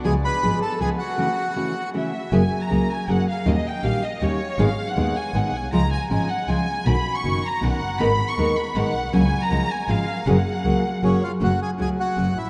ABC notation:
X:1
M:3/4
L:1/16
Q:1/4=159
K:F#m
V:1 name="Violin section"
G2 B4 A2 G2 F2- | F8 e4 | [K:F#] g3 a3 g2 f2 e2 | d2 =g2 e2 d2 c4 |
e3 f3 g2 f2 g2 | a2 g2 g2 f2 g4 | b3 c'3 a2 f4 | b3 c'3 b2 f4 |
g3 a3 g2 e4 | f8- f2 z2 | [K:F#m] z12 |]
V:2 name="Bandoneon"
[Gg]2 [Bb]4 [Aa]2 [Gg]2 [Ff]2- | [Ff]8 z4 | [K:F#] z12 | z12 |
z12 | z12 | z12 | z12 |
z12 | z8 [Cc]2 [Ee]2 | [K:F#m] [Ff]2 [Gg]2 [Gg]2 [Ff]4 [Ee]2 |]
V:3 name="Nylon-string guitar"
[C,^E,G,B,G] z3 [C,E,G,B,G]2 z2 [C,E,G,B,G]2 z2 | [C,E,A,CF] z3 [C,E,A,CF]2 z2 [C,E,A,CF]2 z2 | [K:F#] [F,A,CG] z3 [F,A,CG]2 z2 [F,A,CG]2 z2 | [D,=G,C=G] z3 [D,G,CG]2 z2 [D,G,CG]2 z2 |
[D,G,B,DG] z3 [D,G,B,DG]2 z2 [D,G,B,DG]2 z2 | [C,E,G,CE] z3 [C,E,G,CE]2 z2 [C,E,G,CE]2 z2 | [B,,D,CF] z3 [B,,D,CF]2 z2 [B,,D,CF]2 z2 | [D,G,B,DA] z3 [D,G,B,DA]2 z2 [D,G,B,DA]2 z2 |
[C,F,A,CF] z3 [C,E,G,CE]2 z2 [C,E,G,CE]2 z2 | [F,A,CG] z3 [F,A,CG]2 z2 [F,A,CG]2 z2 | [K:F#m] [C,F,A,CF] z3 [C,F,A,CF]2 z2 [C,F,A,CF]2 z2 |]
V:4 name="Double bass" clef=bass
C,,2 z2 G,,,2 z2 C,,2 z2 | z12 | [K:F#] F,,,2 z2 C,,2 z2 F,,,2 z2 | D,,2 z2 A,,,2 z2 D,,2 z2 |
G,,,2 z2 D,,2 z2 G,,,2 B,,,2 | C,,2 z2 G,,,2 z2 C,,2 z2 | B,,,2 z2 F,,,2 z2 B,,,2 F,,,2 | G,,,2 z2 D,,2 z2 G,,,2 B,,,2 |
C,,2 z2 C,,2 z2 G,,,2 z2 | F,,,2 z2 C,,2 z2 F,,,2 z2 | [K:F#m] F,,,2 z2 C,,2 z2 F,,,2 A,,,2 |]